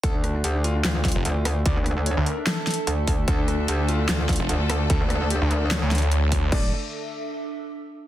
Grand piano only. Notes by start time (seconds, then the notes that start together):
0.04 A4
0.14 D4
0.24 D4
0.35 D4
0.44 G4
0.55 D4
0.64 F4
0.75 D4
0.84 F4
1.66 D5
1.76 D4
1.86 D4
1.97 D4
2.06 C#5
2.17 D4
2.26 A#4
2.37 D4
2.47 A4
3.28 A4
3.39 D4
3.48 D4
3.59 D4
3.68 G4
3.79 D4
3.89 F4
3.99 D4
4.09 F4
4.90 A4
5.01 D4
5.10 D4
5.21 D4
5.31 G4
5.41 D4
5.51 A#4
5.62 D4
5.71 C#5
6.52 D5